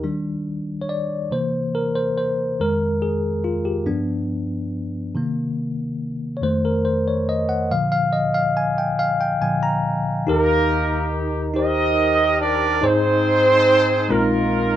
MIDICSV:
0, 0, Header, 1, 3, 480
1, 0, Start_track
1, 0, Key_signature, -3, "major"
1, 0, Tempo, 853485
1, 20, Time_signature, 6, 3, 24, 8
1, 8303, End_track
2, 0, Start_track
2, 0, Title_t, "Horn section"
2, 0, Program_c, 0, 61
2, 5782, Note_on_c, 0, 58, 90
2, 5782, Note_on_c, 0, 70, 98
2, 5784, Note_on_c, 0, 67, 75
2, 5788, Note_on_c, 0, 63, 78
2, 6235, Note_off_c, 0, 58, 0
2, 6235, Note_off_c, 0, 70, 0
2, 6476, Note_off_c, 0, 67, 0
2, 6478, Note_off_c, 0, 63, 0
2, 6500, Note_on_c, 0, 63, 95
2, 6500, Note_on_c, 0, 75, 103
2, 6505, Note_on_c, 0, 67, 75
2, 6508, Note_on_c, 0, 70, 79
2, 6954, Note_off_c, 0, 63, 0
2, 6954, Note_off_c, 0, 75, 0
2, 6976, Note_on_c, 0, 62, 101
2, 6976, Note_on_c, 0, 74, 110
2, 7197, Note_off_c, 0, 67, 0
2, 7198, Note_off_c, 0, 70, 0
2, 7215, Note_off_c, 0, 62, 0
2, 7215, Note_off_c, 0, 74, 0
2, 7221, Note_on_c, 0, 60, 101
2, 7221, Note_on_c, 0, 72, 110
2, 7229, Note_on_c, 0, 63, 76
2, 7230, Note_on_c, 0, 68, 73
2, 7919, Note_off_c, 0, 63, 0
2, 7920, Note_off_c, 0, 68, 0
2, 7932, Note_on_c, 0, 58, 80
2, 7932, Note_on_c, 0, 70, 87
2, 7938, Note_off_c, 0, 60, 0
2, 7938, Note_off_c, 0, 72, 0
2, 7942, Note_on_c, 0, 65, 66
2, 7944, Note_on_c, 0, 63, 71
2, 8303, Note_off_c, 0, 58, 0
2, 8303, Note_off_c, 0, 63, 0
2, 8303, Note_off_c, 0, 65, 0
2, 8303, Note_off_c, 0, 70, 0
2, 8303, End_track
3, 0, Start_track
3, 0, Title_t, "Tine electric piano"
3, 0, Program_c, 1, 4
3, 0, Control_c, 1, 64, 127
3, 19, Note_on_c, 1, 51, 45
3, 21, Note_on_c, 1, 55, 45
3, 22, Note_on_c, 1, 62, 51
3, 27, Control_c, 1, 64, 0
3, 115, Control_c, 1, 64, 127
3, 458, Note_on_c, 1, 73, 64
3, 498, Note_off_c, 1, 73, 0
3, 502, Note_on_c, 1, 74, 76
3, 715, Note_off_c, 1, 51, 0
3, 716, Note_off_c, 1, 55, 0
3, 716, Note_off_c, 1, 62, 0
3, 723, Note_off_c, 1, 74, 0
3, 738, Note_on_c, 1, 48, 47
3, 740, Note_on_c, 1, 52, 45
3, 744, Note_on_c, 1, 72, 79
3, 745, Control_c, 1, 64, 0
3, 747, Note_on_c, 1, 58, 48
3, 839, Control_c, 1, 64, 127
3, 851, Note_off_c, 1, 72, 0
3, 983, Note_on_c, 1, 70, 77
3, 1056, Note_off_c, 1, 48, 0
3, 1058, Note_off_c, 1, 52, 0
3, 1061, Note_off_c, 1, 58, 0
3, 1092, Note_off_c, 1, 70, 0
3, 1099, Note_on_c, 1, 72, 78
3, 1217, Note_off_c, 1, 72, 0
3, 1224, Note_on_c, 1, 72, 79
3, 1463, Control_c, 1, 64, 0
3, 1463, Note_on_c, 1, 41, 54
3, 1464, Note_on_c, 1, 51, 45
3, 1467, Note_off_c, 1, 72, 0
3, 1467, Note_on_c, 1, 70, 89
3, 1470, Note_on_c, 1, 56, 56
3, 1562, Control_c, 1, 64, 127
3, 1685, Note_off_c, 1, 70, 0
3, 1699, Note_on_c, 1, 68, 78
3, 1936, Note_on_c, 1, 65, 67
3, 1944, Note_off_c, 1, 68, 0
3, 2054, Note_on_c, 1, 67, 62
3, 2059, Note_off_c, 1, 65, 0
3, 2156, Note_off_c, 1, 41, 0
3, 2156, Note_off_c, 1, 51, 0
3, 2159, Note_off_c, 1, 56, 0
3, 2170, Note_on_c, 1, 43, 46
3, 2172, Note_on_c, 1, 62, 70
3, 2173, Note_on_c, 1, 53, 44
3, 2176, Note_on_c, 1, 59, 61
3, 2178, Note_off_c, 1, 67, 0
3, 2183, Control_c, 1, 64, 0
3, 2281, Control_c, 1, 64, 127
3, 2491, Note_off_c, 1, 43, 0
3, 2493, Note_off_c, 1, 53, 0
3, 2494, Note_off_c, 1, 59, 0
3, 2870, Note_off_c, 1, 62, 0
3, 2895, Note_on_c, 1, 48, 52
3, 2900, Note_on_c, 1, 51, 51
3, 2903, Control_c, 1, 64, 0
3, 2907, Note_on_c, 1, 58, 60
3, 3013, Control_c, 1, 64, 127
3, 3214, Note_off_c, 1, 48, 0
3, 3216, Note_off_c, 1, 51, 0
3, 3220, Note_off_c, 1, 58, 0
3, 3581, Note_on_c, 1, 73, 55
3, 3607, Note_on_c, 1, 41, 54
3, 3613, Note_off_c, 1, 73, 0
3, 3613, Note_on_c, 1, 51, 47
3, 3617, Note_on_c, 1, 57, 57
3, 3618, Note_on_c, 1, 72, 77
3, 3620, Control_c, 1, 64, 0
3, 3714, Control_c, 1, 64, 127
3, 3740, Note_off_c, 1, 72, 0
3, 3740, Note_on_c, 1, 70, 70
3, 3852, Note_on_c, 1, 72, 68
3, 3860, Note_off_c, 1, 70, 0
3, 3929, Note_off_c, 1, 41, 0
3, 3932, Note_off_c, 1, 51, 0
3, 3935, Note_off_c, 1, 57, 0
3, 3977, Note_off_c, 1, 72, 0
3, 3979, Note_on_c, 1, 73, 64
3, 4099, Note_on_c, 1, 75, 80
3, 4100, Note_off_c, 1, 73, 0
3, 4212, Note_on_c, 1, 78, 76
3, 4220, Note_off_c, 1, 75, 0
3, 4335, Note_on_c, 1, 46, 51
3, 4336, Note_off_c, 1, 78, 0
3, 4339, Note_on_c, 1, 50, 48
3, 4339, Note_on_c, 1, 77, 90
3, 4342, Control_c, 1, 64, 0
3, 4342, Note_on_c, 1, 53, 59
3, 4446, Note_off_c, 1, 77, 0
3, 4447, Control_c, 1, 64, 127
3, 4453, Note_on_c, 1, 77, 90
3, 4570, Note_on_c, 1, 75, 84
3, 4577, Note_off_c, 1, 77, 0
3, 4693, Note_on_c, 1, 77, 85
3, 4696, Note_off_c, 1, 75, 0
3, 4817, Note_off_c, 1, 77, 0
3, 4818, Note_on_c, 1, 80, 82
3, 4928, Note_off_c, 1, 80, 0
3, 4939, Note_on_c, 1, 79, 81
3, 5032, Note_off_c, 1, 46, 0
3, 5034, Note_off_c, 1, 50, 0
3, 5035, Note_off_c, 1, 53, 0
3, 5057, Note_on_c, 1, 77, 94
3, 5060, Note_off_c, 1, 79, 0
3, 5178, Note_on_c, 1, 79, 89
3, 5179, Note_off_c, 1, 77, 0
3, 5293, Note_on_c, 1, 46, 44
3, 5296, Note_on_c, 1, 50, 40
3, 5296, Note_on_c, 1, 80, 77
3, 5299, Note_off_c, 1, 79, 0
3, 5300, Note_on_c, 1, 53, 47
3, 5406, Note_off_c, 1, 80, 0
3, 5415, Note_on_c, 1, 82, 76
3, 5511, Note_off_c, 1, 46, 0
3, 5512, Note_off_c, 1, 50, 0
3, 5514, Note_off_c, 1, 53, 0
3, 5751, Note_off_c, 1, 82, 0
3, 5775, Note_on_c, 1, 63, 75
3, 5782, Control_c, 1, 64, 0
3, 5782, Note_on_c, 1, 67, 73
3, 5783, Note_on_c, 1, 39, 63
3, 5783, Note_on_c, 1, 51, 58
3, 5789, Note_on_c, 1, 70, 92
3, 5878, Control_c, 1, 64, 127
3, 6420, Note_off_c, 1, 63, 0
3, 6424, Note_off_c, 1, 67, 0
3, 6428, Note_off_c, 1, 70, 0
3, 6489, Note_on_c, 1, 63, 67
3, 6496, Note_on_c, 1, 67, 58
3, 6503, Note_on_c, 1, 72, 68
3, 7138, Note_off_c, 1, 63, 0
3, 7142, Note_off_c, 1, 67, 0
3, 7145, Note_off_c, 1, 72, 0
3, 7196, Note_off_c, 1, 39, 0
3, 7196, Note_off_c, 1, 51, 0
3, 7205, Note_on_c, 1, 63, 82
3, 7215, Note_on_c, 1, 44, 65
3, 7215, Note_on_c, 1, 68, 75
3, 7220, Control_c, 1, 64, 0
3, 7220, Note_on_c, 1, 72, 98
3, 7301, Control_c, 1, 64, 127
3, 7856, Note_off_c, 1, 63, 0
3, 7861, Note_off_c, 1, 68, 0
3, 7864, Note_off_c, 1, 72, 0
3, 7912, Note_off_c, 1, 44, 0
3, 7923, Note_on_c, 1, 56, 66
3, 7928, Note_on_c, 1, 60, 61
3, 7931, Note_on_c, 1, 63, 70
3, 7933, Note_on_c, 1, 46, 64
3, 7933, Note_on_c, 1, 65, 63
3, 7934, Note_on_c, 1, 34, 66
3, 7939, Note_on_c, 1, 70, 76
3, 7942, Control_c, 1, 64, 0
3, 8032, Control_c, 1, 64, 127
3, 8303, Note_off_c, 1, 34, 0
3, 8303, Note_off_c, 1, 46, 0
3, 8303, Note_off_c, 1, 56, 0
3, 8303, Note_off_c, 1, 60, 0
3, 8303, Note_off_c, 1, 63, 0
3, 8303, Note_off_c, 1, 65, 0
3, 8303, Note_off_c, 1, 70, 0
3, 8303, End_track
0, 0, End_of_file